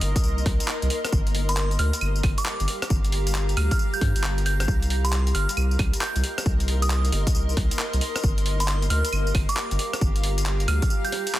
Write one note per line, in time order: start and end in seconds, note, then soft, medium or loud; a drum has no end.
0.00 0.13 G1 loud
0.00 2.57 A#4 medium
0.00 1.12 D#5 medium
0.00 2.29 C6 medium
0.00 open hi-hat loud
0.16 kick loud
0.16 closed hi-hat medium
0.16 tambourine medium
0.24 0.43 C2 medium
0.24 tambourine soft
0.38 tambourine soft
0.46 0.58 C2 loud
0.46 kick loud
0.46 cross-stick soft
0.46 open hi-hat loud
0.60 closed hi-hat medium
0.60 tambourine medium
0.68 clap loud
0.82 0.89 C2 loud
0.82 closed hi-hat medium
0.82 tambourine soft
0.90 open hi-hat loud
1.05 cross-stick medium
1.05 closed hi-hat medium
1.05 tambourine medium
1.12 1.77 G1 loud
1.12 6.13 G4 medium
1.12 kick loud
1.12 tambourine medium
1.27 closed hi-hat soft
1.27 tambourine soft
1.32 6.05 F5 medium
1.32 open hi-hat loud
1.49 1.62 C6 loud
1.49 closed hi-hat medium
1.49 tambourine medium
1.57 clap loud
1.71 closed hi-hat soft
1.71 tambourine soft
1.79 1.91 D2 loud
1.79 1.96 F6 loud
1.79 open hi-hat loud
1.93 closed hi-hat medium
1.93 tambourine medium
2.00 2.21 G1 medium
2.00 5.49 A#5 loud
2.00 tambourine medium
2.00 claves medium
2.16 tambourine soft
2.23 2.36 G1 loud
2.23 kick loud
2.23 cross-stick soft
2.23 open hi-hat loud
2.23 claves medium
2.38 2.68 D6 medium
2.38 closed hi-hat medium
2.38 tambourine medium
2.46 clap loud
2.46 tambourine medium
2.60 2.67 G1 loud
2.60 closed hi-hat soft
2.60 tambourine soft
2.68 open hi-hat loud
2.82 cross-stick medium
2.82 closed hi-hat medium
2.82 tambourine medium
2.90 3.55 G1 loud
2.90 kick loud
2.90 tambourine medium
3.05 closed hi-hat medium
3.05 tambourine soft
3.12 open hi-hat loud
3.27 closed hi-hat medium
3.27 tambourine medium
3.35 clap loud
3.49 closed hi-hat soft
3.49 tambourine soft
3.57 3.69 D2 loud
3.57 3.66 F6 loud
3.57 open hi-hat loud
3.57 claves medium
3.71 3.76 F6 medium
3.71 kick loud
3.71 closed hi-hat medium
3.71 tambourine medium
3.79 tambourine medium
3.94 4.38 G6 medium
3.94 tambourine soft
4.01 4.13 G2 medium
4.01 kick loud
4.01 cross-stick soft
4.01 open hi-hat loud
4.16 4.66 G1 loud
4.16 closed hi-hat medium
4.16 tambourine medium
4.24 clap loud
4.24 tambourine medium
4.38 closed hi-hat soft
4.38 tambourine soft
4.46 4.55 G6 medium
4.46 open hi-hat loud
4.60 4.65 G6 medium
4.60 cross-stick medium
4.60 closed hi-hat medium
4.60 tambourine medium
4.68 5.33 C2 loud
4.68 8.80 A#4 medium
4.68 kick loud
4.68 tambourine medium
4.82 closed hi-hat medium
4.82 tambourine soft
4.90 open hi-hat loud
5.05 5.17 C6 loud
5.05 closed hi-hat medium
5.05 tambourine medium
5.11 8.24 D#5 medium
5.11 clap loud
5.11 tambourine medium
5.27 8.87 C6 medium
5.27 closed hi-hat soft
5.27 tambourine soft
5.35 5.47 G1 medium
5.35 5.52 F6 loud
5.35 open hi-hat loud
5.49 closed hi-hat medium
5.49 tambourine medium
5.57 5.77 C2 medium
5.57 tambourine medium
5.57 claves medium
5.71 tambourine soft
5.79 5.91 C2 loud
5.79 kick loud
5.79 cross-stick soft
5.79 open hi-hat loud
5.79 claves medium
5.93 closed hi-hat medium
5.93 tambourine medium
6.01 6.18 G6 medium
6.01 clap loud
6.01 tambourine medium
6.16 6.22 C2 loud
6.16 closed hi-hat medium
6.16 tambourine soft
6.24 open hi-hat loud
6.38 cross-stick medium
6.38 closed hi-hat medium
6.38 tambourine medium
6.46 7.10 C2 loud
6.46 kick loud
6.46 tambourine medium
6.60 closed hi-hat medium
6.60 tambourine soft
6.68 open hi-hat loud
6.82 6.87 D#6 medium
6.82 closed hi-hat medium
6.82 tambourine medium
6.90 clap loud
6.90 tambourine medium
7.05 closed hi-hat soft
7.05 tambourine soft
7.12 7.25 G1 loud
7.12 open hi-hat loud
7.27 kick loud
7.27 closed hi-hat medium
7.27 tambourine medium
7.35 7.54 C2 medium
7.35 tambourine medium
7.49 tambourine soft
7.57 7.69 C2 loud
7.57 kick loud
7.57 cross-stick soft
7.57 open hi-hat loud
7.71 closed hi-hat medium
7.71 tambourine medium
7.79 clap loud
7.79 tambourine medium
7.93 8.00 C2 loud
7.93 closed hi-hat medium
7.93 tambourine soft
8.01 open hi-hat loud
8.16 cross-stick medium
8.16 closed hi-hat medium
8.16 tambourine medium
8.24 8.88 G1 loud
8.24 11.40 G4 medium
8.24 kick loud
8.24 tambourine medium
8.35 11.40 F5 medium
8.35 closed hi-hat medium
8.35 tambourine soft
8.46 open hi-hat loud
8.60 8.73 C6 medium
8.60 closed hi-hat medium
8.60 tambourine medium
8.68 clap loud
8.68 tambourine medium
8.82 11.40 A#5 medium
8.82 closed hi-hat soft
8.82 tambourine soft
8.90 9.02 D2 medium
8.90 9.07 F6 loud
8.90 open hi-hat loud
9.05 closed hi-hat medium
9.05 tambourine medium
9.12 9.32 G1 medium
9.12 tambourine medium
9.12 claves medium
9.27 tambourine soft
9.35 9.47 G1 loud
9.35 kick loud
9.35 cross-stick soft
9.35 open hi-hat loud
9.35 claves medium
9.49 9.79 D6 medium
9.49 closed hi-hat medium
9.49 tambourine medium
9.57 clap loud
9.57 tambourine medium
9.71 9.78 G1 loud
9.71 closed hi-hat medium
9.71 tambourine soft
9.79 open hi-hat loud
9.93 cross-stick medium
9.93 closed hi-hat medium
9.93 tambourine medium
10.01 10.66 G1 loud
10.01 kick loud
10.01 tambourine medium
10.16 closed hi-hat medium
10.16 tambourine soft
10.24 open hi-hat loud
10.38 closed hi-hat medium
10.38 tambourine medium
10.46 clap loud
10.60 closed hi-hat soft
10.60 tambourine soft
10.68 10.80 D2 loud
10.68 10.77 F6 medium
10.68 open hi-hat loud
10.68 claves medium
10.82 10.88 F6 medium
10.82 kick loud
10.82 closed hi-hat medium
10.82 tambourine medium
10.90 tambourine medium
11.05 11.40 G6 medium
11.05 closed hi-hat soft
11.05 tambourine soft
11.12 cross-stick soft
11.12 open hi-hat loud
11.27 closed hi-hat medium
11.27 tambourine medium
11.35 clap loud
11.35 tambourine medium